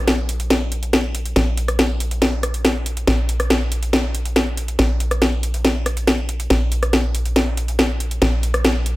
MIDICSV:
0, 0, Header, 1, 3, 480
1, 0, Start_track
1, 0, Tempo, 428571
1, 1523, Time_signature, 4, 2, 24, 8
1, 10039, End_track
2, 0, Start_track
2, 0, Title_t, "Analog synth bass"
2, 0, Program_c, 0, 38
2, 0, Note_on_c, 0, 34, 89
2, 1499, Note_off_c, 0, 34, 0
2, 1523, Note_on_c, 0, 34, 87
2, 3420, Note_off_c, 0, 34, 0
2, 3443, Note_on_c, 0, 34, 90
2, 5339, Note_off_c, 0, 34, 0
2, 5363, Note_on_c, 0, 34, 88
2, 7260, Note_off_c, 0, 34, 0
2, 7283, Note_on_c, 0, 34, 89
2, 9180, Note_off_c, 0, 34, 0
2, 9203, Note_on_c, 0, 34, 90
2, 10039, Note_off_c, 0, 34, 0
2, 10039, End_track
3, 0, Start_track
3, 0, Title_t, "Drums"
3, 84, Note_on_c, 9, 38, 115
3, 84, Note_on_c, 9, 42, 65
3, 196, Note_off_c, 9, 38, 0
3, 196, Note_off_c, 9, 42, 0
3, 324, Note_on_c, 9, 42, 93
3, 436, Note_off_c, 9, 42, 0
3, 446, Note_on_c, 9, 42, 65
3, 558, Note_off_c, 9, 42, 0
3, 564, Note_on_c, 9, 38, 114
3, 564, Note_on_c, 9, 42, 63
3, 676, Note_off_c, 9, 38, 0
3, 676, Note_off_c, 9, 42, 0
3, 688, Note_on_c, 9, 38, 55
3, 800, Note_off_c, 9, 38, 0
3, 803, Note_on_c, 9, 42, 90
3, 915, Note_off_c, 9, 42, 0
3, 922, Note_on_c, 9, 42, 44
3, 926, Note_off_c, 9, 42, 0
3, 926, Note_on_c, 9, 42, 66
3, 1038, Note_off_c, 9, 42, 0
3, 1044, Note_on_c, 9, 38, 116
3, 1044, Note_on_c, 9, 42, 64
3, 1156, Note_off_c, 9, 38, 0
3, 1156, Note_off_c, 9, 42, 0
3, 1284, Note_on_c, 9, 42, 93
3, 1396, Note_off_c, 9, 42, 0
3, 1406, Note_on_c, 9, 42, 67
3, 1518, Note_off_c, 9, 42, 0
3, 1524, Note_on_c, 9, 38, 109
3, 1524, Note_on_c, 9, 42, 64
3, 1636, Note_off_c, 9, 38, 0
3, 1636, Note_off_c, 9, 42, 0
3, 1655, Note_on_c, 9, 42, 41
3, 1763, Note_off_c, 9, 42, 0
3, 1763, Note_on_c, 9, 42, 90
3, 1875, Note_off_c, 9, 42, 0
3, 1885, Note_on_c, 9, 37, 82
3, 1885, Note_on_c, 9, 42, 65
3, 1997, Note_off_c, 9, 37, 0
3, 1997, Note_off_c, 9, 42, 0
3, 2004, Note_on_c, 9, 38, 117
3, 2004, Note_on_c, 9, 42, 67
3, 2116, Note_off_c, 9, 38, 0
3, 2116, Note_off_c, 9, 42, 0
3, 2243, Note_on_c, 9, 42, 93
3, 2355, Note_off_c, 9, 42, 0
3, 2366, Note_on_c, 9, 42, 64
3, 2368, Note_on_c, 9, 38, 48
3, 2478, Note_off_c, 9, 42, 0
3, 2480, Note_off_c, 9, 38, 0
3, 2484, Note_on_c, 9, 38, 114
3, 2484, Note_on_c, 9, 42, 65
3, 2596, Note_off_c, 9, 38, 0
3, 2596, Note_off_c, 9, 42, 0
3, 2601, Note_on_c, 9, 38, 57
3, 2713, Note_off_c, 9, 38, 0
3, 2724, Note_on_c, 9, 37, 76
3, 2724, Note_on_c, 9, 42, 92
3, 2836, Note_off_c, 9, 37, 0
3, 2836, Note_off_c, 9, 42, 0
3, 2846, Note_on_c, 9, 42, 68
3, 2958, Note_off_c, 9, 42, 0
3, 2964, Note_on_c, 9, 38, 113
3, 2964, Note_on_c, 9, 42, 67
3, 3076, Note_off_c, 9, 38, 0
3, 3076, Note_off_c, 9, 42, 0
3, 3087, Note_on_c, 9, 42, 40
3, 3199, Note_off_c, 9, 42, 0
3, 3203, Note_on_c, 9, 42, 91
3, 3315, Note_off_c, 9, 42, 0
3, 3326, Note_on_c, 9, 42, 68
3, 3438, Note_off_c, 9, 42, 0
3, 3443, Note_on_c, 9, 38, 110
3, 3443, Note_on_c, 9, 42, 63
3, 3555, Note_off_c, 9, 38, 0
3, 3555, Note_off_c, 9, 42, 0
3, 3684, Note_on_c, 9, 42, 91
3, 3796, Note_off_c, 9, 42, 0
3, 3805, Note_on_c, 9, 37, 86
3, 3805, Note_on_c, 9, 42, 64
3, 3917, Note_off_c, 9, 37, 0
3, 3917, Note_off_c, 9, 42, 0
3, 3923, Note_on_c, 9, 38, 109
3, 3923, Note_on_c, 9, 42, 65
3, 4035, Note_off_c, 9, 38, 0
3, 4035, Note_off_c, 9, 42, 0
3, 4163, Note_on_c, 9, 42, 92
3, 4275, Note_off_c, 9, 42, 0
3, 4285, Note_on_c, 9, 42, 64
3, 4397, Note_off_c, 9, 42, 0
3, 4403, Note_on_c, 9, 38, 112
3, 4403, Note_on_c, 9, 42, 64
3, 4515, Note_off_c, 9, 38, 0
3, 4515, Note_off_c, 9, 42, 0
3, 4527, Note_on_c, 9, 38, 57
3, 4639, Note_off_c, 9, 38, 0
3, 4643, Note_on_c, 9, 42, 90
3, 4755, Note_off_c, 9, 42, 0
3, 4762, Note_on_c, 9, 42, 39
3, 4765, Note_off_c, 9, 42, 0
3, 4765, Note_on_c, 9, 42, 65
3, 4877, Note_off_c, 9, 42, 0
3, 4883, Note_on_c, 9, 38, 108
3, 4883, Note_on_c, 9, 42, 64
3, 4995, Note_off_c, 9, 38, 0
3, 4995, Note_off_c, 9, 42, 0
3, 5123, Note_on_c, 9, 42, 89
3, 5235, Note_off_c, 9, 42, 0
3, 5245, Note_on_c, 9, 42, 66
3, 5357, Note_off_c, 9, 42, 0
3, 5363, Note_on_c, 9, 38, 107
3, 5363, Note_on_c, 9, 42, 63
3, 5475, Note_off_c, 9, 38, 0
3, 5475, Note_off_c, 9, 42, 0
3, 5484, Note_on_c, 9, 42, 45
3, 5596, Note_off_c, 9, 42, 0
3, 5603, Note_on_c, 9, 42, 86
3, 5715, Note_off_c, 9, 42, 0
3, 5725, Note_on_c, 9, 37, 84
3, 5725, Note_on_c, 9, 42, 63
3, 5837, Note_off_c, 9, 37, 0
3, 5837, Note_off_c, 9, 42, 0
3, 5843, Note_on_c, 9, 38, 107
3, 5843, Note_on_c, 9, 42, 62
3, 5955, Note_off_c, 9, 38, 0
3, 5955, Note_off_c, 9, 42, 0
3, 6083, Note_on_c, 9, 42, 88
3, 6195, Note_off_c, 9, 42, 0
3, 6205, Note_on_c, 9, 38, 45
3, 6205, Note_on_c, 9, 42, 63
3, 6317, Note_off_c, 9, 38, 0
3, 6317, Note_off_c, 9, 42, 0
3, 6323, Note_on_c, 9, 38, 108
3, 6323, Note_on_c, 9, 42, 63
3, 6435, Note_off_c, 9, 38, 0
3, 6435, Note_off_c, 9, 42, 0
3, 6444, Note_on_c, 9, 38, 51
3, 6556, Note_off_c, 9, 38, 0
3, 6563, Note_on_c, 9, 37, 76
3, 6563, Note_on_c, 9, 42, 85
3, 6675, Note_off_c, 9, 37, 0
3, 6675, Note_off_c, 9, 42, 0
3, 6685, Note_on_c, 9, 42, 63
3, 6797, Note_off_c, 9, 42, 0
3, 6803, Note_on_c, 9, 38, 108
3, 6803, Note_on_c, 9, 42, 60
3, 6915, Note_off_c, 9, 38, 0
3, 6915, Note_off_c, 9, 42, 0
3, 6921, Note_on_c, 9, 42, 43
3, 7033, Note_off_c, 9, 42, 0
3, 7043, Note_on_c, 9, 42, 82
3, 7049, Note_on_c, 9, 54, 69
3, 7155, Note_off_c, 9, 42, 0
3, 7161, Note_off_c, 9, 54, 0
3, 7165, Note_on_c, 9, 42, 63
3, 7277, Note_off_c, 9, 42, 0
3, 7283, Note_on_c, 9, 38, 110
3, 7283, Note_on_c, 9, 42, 60
3, 7395, Note_off_c, 9, 38, 0
3, 7395, Note_off_c, 9, 42, 0
3, 7522, Note_on_c, 9, 54, 63
3, 7523, Note_on_c, 9, 42, 84
3, 7634, Note_off_c, 9, 54, 0
3, 7635, Note_off_c, 9, 42, 0
3, 7645, Note_on_c, 9, 37, 89
3, 7645, Note_on_c, 9, 42, 60
3, 7757, Note_off_c, 9, 37, 0
3, 7757, Note_off_c, 9, 42, 0
3, 7763, Note_on_c, 9, 38, 107
3, 7763, Note_on_c, 9, 42, 58
3, 7875, Note_off_c, 9, 38, 0
3, 7875, Note_off_c, 9, 42, 0
3, 8003, Note_on_c, 9, 42, 86
3, 8115, Note_off_c, 9, 42, 0
3, 8125, Note_on_c, 9, 42, 58
3, 8237, Note_off_c, 9, 42, 0
3, 8243, Note_on_c, 9, 38, 112
3, 8243, Note_on_c, 9, 42, 59
3, 8355, Note_off_c, 9, 38, 0
3, 8355, Note_off_c, 9, 42, 0
3, 8366, Note_on_c, 9, 38, 54
3, 8478, Note_off_c, 9, 38, 0
3, 8483, Note_on_c, 9, 42, 85
3, 8595, Note_off_c, 9, 42, 0
3, 8605, Note_on_c, 9, 42, 62
3, 8615, Note_off_c, 9, 42, 0
3, 8615, Note_on_c, 9, 42, 44
3, 8723, Note_off_c, 9, 42, 0
3, 8723, Note_on_c, 9, 38, 108
3, 8723, Note_on_c, 9, 42, 60
3, 8835, Note_off_c, 9, 38, 0
3, 8835, Note_off_c, 9, 42, 0
3, 8963, Note_on_c, 9, 42, 83
3, 8966, Note_on_c, 9, 54, 72
3, 9075, Note_off_c, 9, 42, 0
3, 9078, Note_off_c, 9, 54, 0
3, 9085, Note_on_c, 9, 42, 64
3, 9197, Note_off_c, 9, 42, 0
3, 9203, Note_on_c, 9, 38, 114
3, 9203, Note_on_c, 9, 42, 59
3, 9315, Note_off_c, 9, 38, 0
3, 9315, Note_off_c, 9, 42, 0
3, 9323, Note_on_c, 9, 42, 41
3, 9435, Note_off_c, 9, 42, 0
3, 9443, Note_on_c, 9, 42, 83
3, 9555, Note_off_c, 9, 42, 0
3, 9565, Note_on_c, 9, 37, 92
3, 9565, Note_on_c, 9, 42, 61
3, 9677, Note_off_c, 9, 37, 0
3, 9677, Note_off_c, 9, 42, 0
3, 9683, Note_on_c, 9, 38, 113
3, 9683, Note_on_c, 9, 42, 61
3, 9795, Note_off_c, 9, 38, 0
3, 9795, Note_off_c, 9, 42, 0
3, 9923, Note_on_c, 9, 42, 85
3, 9923, Note_on_c, 9, 54, 67
3, 10035, Note_off_c, 9, 42, 0
3, 10035, Note_off_c, 9, 54, 0
3, 10039, End_track
0, 0, End_of_file